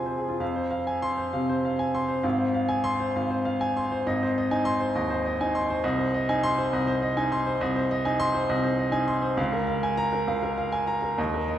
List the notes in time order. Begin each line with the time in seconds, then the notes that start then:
Already playing: F2 C3 C4 F4 G#4 C5 G#5
0.06 C5
0.18 G#4
0.29 F4
0.40 F2 F5
0.56 C5
0.71 F5
0.87 G#5
1.02 C6
1.18 C5
1.33 C3 F5
1.49 C5
1.65 F5
1.79 G#5
1.95 C6
2.08 C5
2.23 G#1 F5
2.38 C5
2.54 F5
2.69 G#5
2.84 C6
3.00 C5
3.16 G#1 F5
3.31 C5
3.45 F5
3.61 G#5
3.77 C6
3.92 C5
4.06 G#1 D#5
4.23 C5
4.38 D#5
4.51 D#4 G#5
4.65 C6
4.80 C5
4.95 D#2 D#5
5.10 C5
5.26 D#5
5.41 D#4 G#5
5.55 C6
5.70 C5
5.84 C2 D#5
5.99 C5
6.14 D#5
6.29 D#4 G#5
6.43 C6
6.58 C5
6.73 C2 D#5
6.87 C5
7.02 D#5
7.17 D#4 G#5
7.32 C6
7.46 C5
7.61 C2 D#5
7.76 C5
7.91 D#5
8.05 D#4 G#5
8.20 C6
8.34 C5
8.49 C2 D#5
8.64 C5
8.79 D#5
8.92 D#4 G#5
9.08 C6
9.22 C5
9.37 C#2 F5
9.52 A#4
9.67 F5
9.83 G#5
9.97 A#5
10.13 A#4
10.28 C#2 F5
10.43 A#4
10.58 F5
10.72 G#5
10.87 A#5
11.02 A#4
11.18 D#2 D#5
11.34 A#4
11.48 D#5